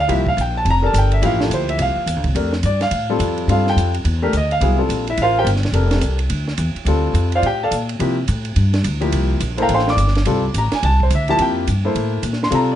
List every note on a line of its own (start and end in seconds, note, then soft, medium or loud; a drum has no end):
0.00 0.10 F5 medium
0.08 0.36 C2 medium
0.08 0.24 F3 medium
0.08 0.24 A#3 medium
0.08 0.25 E4 medium
0.08 0.25 G4 medium
0.08 0.27 E5 medium
0.08 ride medium
0.27 0.38 F5 medium
0.27 kick medium
0.37 0.65 A#1 medium
0.37 hi-hat pedal soft
0.37 ride medium
0.41 0.56 G5 medium
0.57 0.67 A5 medium
0.65 0.93 F1 medium
0.65 ride medium
0.70 0.85 A#5 loud
0.82 1.20 D4 medium
0.82 1.20 G4 medium
0.82 1.20 A4 medium
0.82 1.20 A#4 medium
0.82 0.95 A5 medium
0.93 1.21 G1 medium
0.93 hi-hat pedal medium
0.93 ride medium
0.98 1.13 G5 medium
1.12 1.23 E5 medium
1.12 ride soft
1.22 1.49 A1 medium
1.22 2.00 F3 medium
1.22 2.01 A#3 medium
1.22 2.01 E4 medium
1.22 2.01 G4 medium
1.22 1.41 F5 medium
1.22 ride medium
1.41 1.51 A4 medium
1.41 snare medium
1.50 1.78 D2 medium
1.50 hi-hat pedal soft
1.50 ride medium
1.54 1.69 C5 medium
1.69 1.79 E5 medium
1.69 ride soft
1.78 1.95 C2 medium
1.78 2.23 F5 medium
1.78 ride medium
1.96 muted upright bass stroke soft
2.06 2.16 E2 medium
2.06 hi-hat pedal medium
2.06 ride medium
2.16 2.26 D2 medium
2.24 2.34 C2 medium
2.24 kick soft
2.24 ride soft
2.35 2.63 F2 medium
2.35 2.51 A3 medium
2.35 2.51 D4 medium
2.35 2.51 G4 medium
2.35 2.51 A#4 medium
2.35 ride medium
2.53 snare soft
2.63 2.90 G2 medium
2.63 2.82 D5 medium
2.63 hi-hat pedal medium
2.63 ride medium
2.81 3.08 F5 medium
2.81 snare soft
2.81 ride soft
2.91 3.18 A2 medium
2.91 ride medium
3.10 3.46 G3 medium
3.10 3.47 C4 medium
3.10 3.47 F4 medium
3.10 3.47 A4 medium
3.19 3.47 F2 medium
3.19 hi-hat pedal soft
3.19 ride medium
3.38 ride soft
3.48 3.75 G2 medium
3.48 3.91 G3 medium
3.48 3.91 C4 medium
3.48 3.91 F4 medium
3.48 3.91 A4 medium
3.48 ride medium
3.52 3.67 F5 medium
3.67 3.94 G5 medium
3.67 snare soft
3.76 4.04 F2 medium
3.76 hi-hat pedal soft
3.76 ride medium
3.94 ride soft
4.04 4.32 E2 medium
4.04 ride medium
4.22 4.32 A3 medium
4.22 4.32 D4 medium
4.22 4.32 G4 medium
4.22 4.33 A#4 medium
4.33 4.60 D2 medium
4.33 hi-hat pedal medium
4.33 ride medium
4.37 4.52 D#5 medium
4.51 4.78 F5 medium
4.51 ride soft
4.61 4.88 C2 medium
4.61 4.77 F#3 medium
4.61 4.77 B3 medium
4.61 4.77 E4 medium
4.61 4.78 G#4 medium
4.61 ride medium
4.78 5.03 G3 medium
4.78 5.03 C4 medium
4.78 5.03 F4 medium
4.78 5.03 A4 medium
4.89 5.17 A#1 medium
4.89 hi-hat pedal medium
4.89 ride medium
5.07 5.19 E4 medium
5.07 5.19 E5 medium
5.07 ride soft
5.17 5.44 A1 medium
5.17 ride medium
5.22 5.37 F4 medium
5.22 5.37 A#4 medium
5.22 5.37 C5 medium
5.22 5.37 F5 loud
5.39 5.48 G4 medium
5.39 5.48 A#4 medium
5.39 5.48 C5 medium
5.39 5.48 G5 medium
5.45 5.72 G1 medium
5.45 hi-hat pedal medium
5.45 ride medium
5.56 snare soft
5.63 snare soft
5.63 ride soft
5.72 6.01 F1 medium
5.72 6.16 D4 medium
5.72 6.16 G4 medium
5.72 6.16 A4 medium
5.72 6.17 A#4 medium
5.72 ride medium
5.91 snare medium
5.91 ride soft
6.01 6.29 C2 medium
6.01 hi-hat pedal medium
6.01 ride medium
6.19 ride soft
6.30 6.57 D2 medium
6.30 ride medium
6.48 snare soft
6.58 6.75 E2 medium
6.58 hi-hat pedal medium
6.58 ride medium
6.75 muted upright bass stroke soft
6.75 ride soft
6.85 7.13 D2 medium
6.85 7.29 G3 medium
6.85 7.29 C4 medium
6.85 7.29 F4 medium
6.85 7.30 A4 medium
6.85 ride medium
7.14 7.42 F2 medium
7.14 hi-hat pedal medium
7.14 ride medium
7.32 7.45 C5 medium
7.32 7.45 D5 medium
7.32 7.45 F5 medium
7.32 ride soft
7.36 7.45 F4 medium
7.42 7.70 A2 medium
7.42 ride medium
7.46 7.62 G4 medium
7.46 7.62 G5 medium
7.63 7.73 A4 medium
7.63 7.73 D5 medium
7.63 7.73 F5 medium
7.63 7.73 A5 medium
7.71 7.99 A#2 medium
7.71 hi-hat pedal medium
7.71 ride medium
7.89 ride soft
7.99 8.27 C3 medium
7.99 8.16 F3 medium
7.99 8.16 A#3 medium
7.99 8.16 E4 medium
7.99 8.16 G4 medium
7.99 ride medium
8.28 8.56 A2 medium
8.28 hi-hat pedal soft
8.28 ride medium
8.45 ride soft
8.56 8.83 G2 medium
8.56 ride medium
8.74 snare soft
8.74 ride soft
8.84 9.12 D2 medium
8.84 hi-hat pedal medium
8.84 ride medium
9.01 9.38 F3 medium
9.01 9.39 A#3 medium
9.01 9.39 E4 medium
9.01 9.39 G4 medium
9.01 ride soft
9.12 9.40 C2 medium
9.12 ride medium
9.40 9.68 A#1 medium
9.40 hi-hat pedal medium
9.40 ride medium
9.57 9.95 A#3 medium
9.57 9.95 E4 medium
9.57 9.95 A4 medium
9.57 9.73 C5 medium
9.57 ride soft
9.62 9.71 A#4 medium
9.62 9.71 F5 medium
9.62 9.71 G5 medium
9.62 9.71 A#5 medium
9.69 9.96 A1 medium
9.69 ride medium
9.74 9.89 C5 medium
9.74 9.89 F5 medium
9.74 9.89 G5 medium
9.74 9.89 C6 medium
9.79 snare soft
9.88 9.96 D5 medium
9.88 9.95 D6 medium
9.88 snare soft
9.97 10.25 G1 medium
9.97 hi-hat pedal medium
9.97 ride medium
10.08 snare soft
10.15 snare soft
10.15 ride soft
10.25 10.53 C2 medium
10.25 10.42 G3 medium
10.25 10.42 C4 medium
10.25 10.42 F4 medium
10.25 10.42 A4 medium
10.25 ride medium
10.54 10.70 A1 medium
10.54 hi-hat pedal medium
10.54 ride medium
10.58 10.73 A#5 medium
10.72 10.83 G#5 medium
10.72 muted upright bass stroke soft
10.72 snare medium
10.72 ride soft
10.83 11.10 C2 medium
10.83 11.00 A5 loud
10.83 ride medium
11.00 11.12 C5 medium
11.00 kick soft
11.10 11.38 D2 medium
11.10 hi-hat pedal medium
11.10 ride medium
11.15 11.30 E5 medium
11.28 11.65 F3 medium
11.28 11.65 A#3 medium
11.28 11.65 E4 medium
11.28 11.66 G4 medium
11.28 11.40 A5 loud
11.28 ride soft
11.39 11.66 F2 medium
11.39 11.67 G5 medium
11.39 ride medium
11.67 11.94 G2 medium
11.67 hi-hat pedal medium
11.67 ride medium
11.85 12.22 A#3 medium
11.85 12.22 E4 medium
11.85 12.22 A4 medium
11.85 12.22 C5 medium
11.95 12.22 A2 medium
11.95 ride medium
12.23 12.50 A#2 medium
12.23 hi-hat pedal medium
12.23 ride medium
12.33 snare soft
12.43 12.53 C6 medium
12.43 snare soft
12.50 12.75 C3 medium
12.50 12.75 G3 medium
12.50 12.75 C4 medium
12.50 12.75 F4 medium
12.50 12.75 A4 medium
12.50 ride medium
12.55 12.70 A#5 medium
12.72 12.75 D5 medium